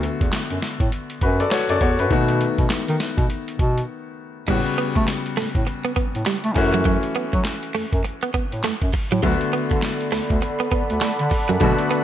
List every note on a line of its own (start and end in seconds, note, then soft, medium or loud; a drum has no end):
0.00 1.47 D3 medium
0.00 1.48 A3 medium
0.00 1.48 B3 medium
0.00 1.19 F#4 medium
0.00 closed hi-hat medium
0.21 0.30 E2 medium
0.21 kick medium
0.21 closed hi-hat medium
0.33 snare loud
0.33 clap medium
0.33 closed hi-hat medium
0.50 0.60 F#2 medium
0.50 closed hi-hat medium
0.62 snare medium
0.62 closed hi-hat medium
0.80 0.89 A2 medium
0.80 kick medium
0.80 closed hi-hat medium
0.92 closed hi-hat medium
1.10 closed hi-hat medium
1.21 1.44 F#2 loud
1.21 1.40 F#4 medium
1.21 1.39 B4 medium
1.21 kick medium
1.21 closed hi-hat medium
1.40 1.51 A4 medium
1.40 1.51 D5 medium
1.40 closed hi-hat medium
1.51 1.69 F#4 medium
1.51 1.69 C#5 medium
1.51 snare loud
1.51 clap medium
1.51 closed hi-hat medium
1.69 1.78 F#2 medium
1.69 1.81 A4 medium
1.69 1.81 D5 medium
1.69 closed hi-hat medium
1.81 1.95 E2 medium
1.81 1.99 F#4 medium
1.81 1.98 C#5 medium
1.81 kick medium
1.81 closed hi-hat medium
1.99 2.12 F#2 loud
1.99 2.11 F#4 medium
1.99 2.28 B4 medium
1.99 closed hi-hat soft
2.10 2.47 B2 loud
2.10 4.44 D#3 medium
2.10 4.44 A3 medium
2.10 4.45 B3 medium
2.10 4.45 F#4 medium
2.10 kick medium
2.10 closed hi-hat medium
2.28 closed hi-hat medium
2.41 closed hi-hat medium
2.58 2.67 B2 medium
2.58 kick medium
2.58 closed hi-hat soft
2.70 snare loud
2.70 clap medium
2.70 closed hi-hat medium
2.88 2.97 D#3 medium
2.88 closed hi-hat medium
3.00 snare medium
3.00 closed hi-hat medium
3.18 3.27 B2 medium
3.18 kick loud
3.18 closed hi-hat medium
3.30 closed hi-hat medium
3.48 closed hi-hat medium
3.59 3.82 B2 medium
3.59 kick medium
3.59 closed hi-hat medium
3.78 closed hi-hat medium
4.48 4.62 A2 medium
4.48 6.52 C#3 medium
4.48 4.58 G3 medium
4.48 6.52 G3 medium
4.48 6.53 B3 medium
4.48 6.53 F#4 medium
4.48 kick loud
4.48 closed hi-hat medium
4.48 crash medium
4.66 closed hi-hat medium
4.78 4.85 A3 soft
4.78 4.88 B3 medium
4.78 closed hi-hat medium
4.95 5.05 A3 loud
4.95 muted clean electric guitar stroke soft
4.95 kick medium
4.95 closed hi-hat medium
5.08 snare loud
5.08 clap medium
5.08 closed hi-hat medium
5.26 closed hi-hat medium
5.37 5.45 A2 soft
5.37 5.47 A3 medium
5.37 snare medium
5.37 open hi-hat medium
5.55 5.64 A2 loud
5.55 kick medium
5.55 closed hi-hat medium
5.67 muted clean electric guitar stroke soft
5.67 closed hi-hat medium
5.85 5.91 B3 medium
5.85 closed hi-hat medium
5.96 6.04 A2 soft
5.96 6.06 B3 medium
5.96 kick medium
5.96 closed hi-hat medium
6.15 6.24 A2 medium
6.15 closed hi-hat medium
6.26 6.36 G3 medium
6.26 snare loud
6.26 clap medium
6.26 closed hi-hat medium
6.44 6.57 A3 medium
6.44 closed hi-hat medium
6.55 7.01 F#2 loud
6.55 8.89 E3 medium
6.55 8.90 A3 medium
6.55 8.90 C#4 medium
6.55 8.91 F#4 medium
6.55 muted clean electric guitar stroke soft
6.55 kick medium
6.55 open hi-hat medium
6.74 6.80 F#3 medium
6.74 closed hi-hat soft
6.85 6.96 F#3 medium
6.85 kick loud
6.85 closed hi-hat medium
7.03 closed hi-hat medium
7.15 7.23 F#3 soft
7.15 7.26 B3 medium
7.15 closed hi-hat medium
7.33 7.42 F#3 loud
7.33 muted clean electric guitar stroke soft
7.33 kick medium
7.33 closed hi-hat medium
7.45 snare loud
7.45 clap medium
7.45 closed hi-hat medium
7.63 closed hi-hat medium
7.75 7.83 F#2 soft
7.75 7.85 A3 medium
7.75 open hi-hat medium
7.93 8.02 F#2 medium
7.93 kick loud
7.93 closed hi-hat medium
8.04 muted clean electric guitar stroke soft
8.04 closed hi-hat medium
8.23 8.29 B3 medium
8.23 closed hi-hat medium
8.34 8.42 A2 soft
8.34 8.44 B3 medium
8.34 kick medium
8.34 closed hi-hat medium
8.52 8.61 A2 medium
8.52 closed hi-hat medium
8.64 8.71 F#2 soft
8.64 8.74 A3 medium
8.64 snare loud
8.64 clap medium
8.64 closed hi-hat medium
8.82 8.91 F#2 medium
8.82 kick loud
8.82 closed hi-hat medium
8.93 muted clean electric guitar stroke soft
8.93 kick medium
8.93 open hi-hat medium
9.12 9.20 A2 medium
9.12 9.18 F#3 medium
9.12 closed hi-hat soft
9.23 9.37 D2 loud
9.23 11.57 D3 medium
9.23 9.33 F#3 medium
9.23 11.57 A3 medium
9.23 11.58 B3 medium
9.23 11.58 F#4 medium
9.23 12.04 A4 medium
9.23 12.04 D5 medium
9.23 12.04 F#5 medium
9.23 12.04 B5 medium
9.23 kick loud
9.23 closed hi-hat medium
9.41 closed hi-hat medium
9.53 9.61 D3 soft
9.53 9.63 B3 medium
9.53 closed hi-hat medium
9.71 9.80 D3 loud
9.71 muted clean electric guitar stroke soft
9.71 kick medium
9.71 closed hi-hat medium
9.82 snare loud
9.82 clap medium
9.82 closed hi-hat medium
10.01 closed hi-hat medium
10.12 10.20 D2 soft
10.12 10.22 A3 medium
10.12 snare medium
10.12 open hi-hat medium
10.30 10.39 D2 medium
10.30 kick loud
10.30 closed hi-hat medium
10.42 muted clean electric guitar stroke soft
10.42 closed hi-hat medium
10.60 10.66 B3 medium
10.60 closed hi-hat medium
10.71 10.79 D2 soft
10.71 10.82 B3 medium
10.71 kick medium
10.71 closed hi-hat medium
10.90 10.99 D2 medium
10.90 closed hi-hat medium
11.01 11.12 A3 medium
11.01 snare loud
11.01 clap medium
11.01 closed hi-hat medium
11.19 11.29 D3 medium
11.19 closed hi-hat medium
11.31 muted clean electric guitar stroke soft
11.31 kick medium
11.31 open hi-hat medium
11.49 11.58 F#2 loud
11.49 11.56 F#3 medium
11.49 closed hi-hat soft
11.60 11.74 B2 loud
11.60 12.04 D3 medium
11.60 11.71 F#3 medium
11.60 12.04 A3 medium
11.60 12.04 B3 medium
11.60 12.04 F#4 medium
11.60 kick loud
11.60 closed hi-hat medium
11.79 closed hi-hat medium
11.91 12.01 B3 medium
11.91 11.98 B3 soft
11.91 closed hi-hat medium